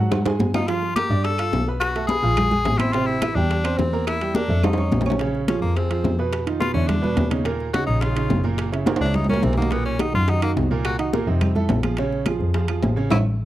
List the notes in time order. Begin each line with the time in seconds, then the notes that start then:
Already playing: G#2 F#3 F#4
0.00 F#5
0.12 high bongo, high conga, low conga, high timbale, claves
0.26 G#3 G#4 G#5, high bongo, high conga, low conga, high timbale
0.40 G2, low bongo, high conga, low timbale
0.54 D#4 F4 F5 F6, low bongo, high conga, low timbale, claves
0.68 F3 F4 F5, high bongo, high conga, high timbale
0.82 high bongo, high conga
0.96 A#3 G4 A#4 A#5, high bongo, high conga, high timbale, low timbale, claves
1.10 G2 D4 D5 D6, high conga
1.24 A4, high bongo, high conga, high timbale
1.38 F4 F5 F6, high bongo, high conga, high timbale, claves
1.52 B1, high bongo, low bongo, high conga, low timbale
1.67 B3 B4 B5, high bongo, high conga
1.80 F#4, high bongo, high conga, high timbale, claves
1.95 A3 A4 A5, high bongo, high conga, high timbale
2.07 B3 G#4 B4 B5, high bongo, high conga, low timbale
2.23 A#1 F3 F4 F5, high conga
2.37 high bongo, high conga, low conga, high timbale, claves
2.51 G#3 G#4 G#5, high bongo, high conga, low conga
2.65 A1, high bongo, low bongo, high conga, high timbale, low timbale
2.78 C4 E4 C5 C6, high bongo, high conga, high timbale, claves
2.92 C3 C4 F4 C5, high bongo, high timbale
3.07 E4, high bongo, high conga
3.22 E3 E4 E5, high bongo, high conga, high timbale, low timbale, claves
3.35 E2 G3 D4 G4 G5, high conga
3.50 high bongo, high conga, high timbale
3.64 C4 C5 C6, high bongo, high conga, high timbale, claves
3.78 E2 C4, high bongo, low bongo, high conga, low timbale
3.93 A#3 A#4 A#5, high bongo, high conga
4.07 E4, high bongo, high conga, high timbale, claves
4.20 G3 G4 G5, high bongo, high conga, high timbale
4.35 A#3 D4 A#4 A#5, high bongo, high conga, low timbale
4.49 F2 A3 A4 A5, high conga
4.63 D#4, high bongo, high conga, low conga, high timbale, claves
4.73 high bongo, high timbale
4.78 C#4 C#5 C#6, high conga, low conga
4.91 A#1, low bongo, high conga, low timbale
5.01 low bongo, low timbale
5.06 C#4 C#5 C#6, high conga, claves
5.10 low bongo, low timbale
5.19 C#3 C#4 C#5, high bongo, high conga, high timbale
5.34 high bongo, high conga
5.48 F3 C#4 F4 G#4, high bongo, high conga, high timbale, low timbale
5.61 F2 A#3, high conga
5.76 F3 C4 F4 G#4, high bongo, high conga, high timbale
5.90 F3 F4 G#4, high conga, high timbale
6.04 F2, high bongo, low bongo, high conga, low timbale
6.19 B2 B3 B4, high bongo, high conga
6.33 high bongo, high conga, high timbale
6.46 D#3 D#4 F4, high bongo, high conga, high timbale
6.60 B2 B3 F4 B4, high bongo, high conga, low timbale
6.74 E2 D3 C#4 D4 E4, high conga
6.88 D4, high bongo, high conga, low conga, high timbale
7.02 B2 B3 B4, high bongo, high conga, low conga
7.16 D#2, high bongo, low bongo, high conga, high timbale, low timbale
7.30 C#3 C#4 D#4, high bongo, high conga, high timbale
7.44 A#2 A#3 A#4, high bongo, high timbale
7.60 high bongo, high conga
7.73 C#3 C#4 D#4 F#4, high bongo, high conga, high timbale, low timbale
7.87 A#1 D#4, high conga
8.01 C#3 C#4 D#4 F4, high bongo, high conga, high timbale
8.16 C#3 C#4 D#4, high bongo, high conga, high timbale
8.30 F#1, high bongo, low bongo, high conga, low timbale
8.44 A#2 A#3 A#4, high bongo, high conga
8.58 high bongo, high conga, high timbale
8.72 C#3 C#4 E4, high bongo, high conga, high timbale
8.86 A#2 A#3 A#4, high bongo, high conga, high timbale
8.96 high timbale
9.00 C#2 C#3 C#4 D4 E4
9.06 high timbale
9.14 D#4, high bongo, high conga, low conga
9.24 high bongo, low timbale
9.29 A#2 A#3 C#4 A#4, high conga, low conga
9.34 low timbale
9.43 B1 C4, high bongo, low bongo, high conga, low timbale
9.53 high bongo, low timbale
9.57 D#3 A#3 D#4 F#4, high conga
9.62 low timbale
9.71 A#2 A#3 B3 A#4, high bongo, high conga, high timbale
9.85 C#4, high bongo, high conga
9.99 D#3 D#4 F#4, high bongo, high conga, high timbale, low timbale, claves
10.14 F#2 F4, high conga
10.28 D#3 D#4 F#4, high bongo, high conga, high timbale
10.42 D#3 A#3 D#4 F#4, high bongo, high conga, high timbale, claves
10.57 C2, high bongo, low bongo, high conga, low timbale
10.71 A#2 A#3 A#4, high bongo, high conga
10.85 F#4, high bongo, high conga, high timbale, claves
10.99 D#3 D#4 F#4, high bongo, high conga, high timbale
11.13 A#2 A#3 A#4, high bongo, high conga, low timbale
11.27 F2 C3 C4 D#4, high conga
11.41 high bongo, high conga, low conga, high timbale, claves
11.55 A2 A3 A4, high bongo, high conga, low conga
11.69 A#1, high bongo, low bongo, high conga, high timbale, low timbale
11.83 F3 F4 G#4, high bongo, high conga, high timbale, claves
11.97 C#3 C#4 C#5, high bongo, high conga, high timbale
12.12 high bongo, high conga
12.26 F3 F4 G#4, high bongo, high conga, high timbale, low timbale, claves
12.40 F2, high conga
12.54 F3 F4 G#4, high bongo, high conga, high timbale
12.68 F3 F4 G#4, high bongo, high conga, high timbale, claves
12.82 A1, high bongo, low bongo, high conga, low timbale
12.96 C#3 C#4 C#5, high bongo, high conga
13.10 A1 A3 C#4 E4, low bongo, low conga, high timbale, claves